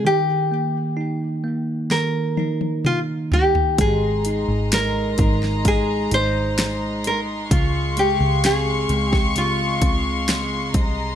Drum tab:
HH |----------------|x-x-x-x-x-x-x-x-|x-x-x-x-x-x-x-x-|
SD |--------o-------|----o--o----o---|----o--o----o---|
T1 |----------oo----|----------------|----------------|
T2 |------------o---|----------------|----------------|
FT |--------------oo|----------------|----------------|
BD |----------------|o-----o-o-------|o------o--o---o-|